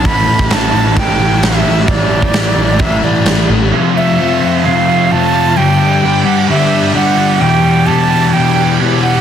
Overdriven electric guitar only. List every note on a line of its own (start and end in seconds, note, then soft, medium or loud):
0.05 3.72 A2 medium
0.05 3.72 E3 medium
0.05 3.73 G3 medium
0.05 3.73 C#4 medium
0.05 3.73 E4 medium
3.72 4.18 F2 medium
3.72 4.18 C3 loud
3.72 3.96 F3 medium
3.72 3.95 A3 medium
3.72 3.94 C4 loud
3.72 3.93 F4 loud
3.95 4.16 F3 soft
3.95 4.17 A3 medium
3.95 4.18 C4 medium
3.95 4.19 F4 medium
4.18 4.42 F3 medium
4.18 4.41 A3 medium
4.18 4.41 C4 medium
4.18 4.40 F4 medium
4.41 4.63 F3 medium
4.41 4.64 A3 medium
4.41 4.64 C4 medium
4.41 4.64 F4 medium
4.63 5.10 F2 medium
4.63 5.10 C3 loud
4.63 4.88 F3 medium
4.63 4.88 A3 loud
4.63 4.87 C4 loud
4.63 4.86 F4 medium
4.88 5.09 F3 medium
4.88 5.10 A3 medium
4.88 5.11 C4 medium
4.88 5.11 F4 medium
5.10 5.34 F3 medium
5.10 5.33 A3 medium
5.10 5.32 C4 medium
5.10 5.32 F4 medium
5.33 5.56 F3 medium
5.33 5.56 A3 medium
5.33 5.55 C4 medium
5.33 5.55 F4 medium
5.56 6.02 G2 medium
5.56 6.03 D3 medium
5.56 5.81 G3 loud
5.56 5.80 B3 medium
5.56 5.79 D4 medium
5.56 5.79 G4 medium
5.79 6.02 G3 medium
5.79 6.03 B3 medium
5.79 6.03 D4 medium
5.79 6.04 G4 medium
6.02 6.28 G3 medium
6.02 6.27 B3 medium
6.02 6.26 D4 medium
6.02 6.25 G4 medium
6.26 6.49 G3 medium
6.26 6.50 B3 medium
6.26 6.50 D4 medium
6.26 6.50 G4 medium
6.49 6.95 G2 medium
6.49 6.95 D3 medium
6.49 6.73 G3 medium
6.49 6.74 B3 loud
6.49 6.72 D4 loud
6.49 6.71 G4 loud
6.72 6.93 G3 medium
6.72 6.95 B3 medium
6.72 6.95 D4 medium
6.72 6.96 G4 medium
6.94 7.18 G3 medium
6.94 7.18 B3 medium
6.94 7.17 D4 medium
6.94 7.16 G4 medium
7.17 7.40 G3 medium
7.17 7.41 B3 medium
7.17 7.39 D4 medium
7.17 7.39 G4 medium
7.40 7.86 E2 medium
7.40 7.87 B2 medium
7.40 7.66 E3 loud
7.40 7.64 G3 medium
7.40 7.64 B3 medium
7.40 7.63 G4 loud
7.64 7.86 E3 medium
7.64 7.86 G3 medium
7.64 7.87 B3 medium
7.64 7.88 G4 medium
7.86 8.12 E3 medium
7.86 8.10 G3 medium
7.86 8.10 B3 medium
7.86 8.08 G4 medium
8.10 8.33 E3 medium
8.10 8.32 G3 medium
8.10 8.33 B3 medium
8.10 8.33 G4 medium
8.32 8.79 E2 medium
8.32 8.79 B2 medium
8.32 8.57 E3 medium
8.32 8.56 G3 medium
8.32 8.55 B3 loud
8.32 8.54 G4 loud
8.55 8.78 E3 medium
8.55 8.78 G3 medium
8.55 8.79 B3 medium
8.55 8.80 G4 medium
8.79 9.03 E3 medium
8.79 9.02 G3 medium
8.79 9.01 B3 medium
8.79 9.01 G4 medium
9.02 9.21 E3 medium
9.02 9.21 G3 medium
9.02 9.21 B3 medium
9.02 9.21 G4 medium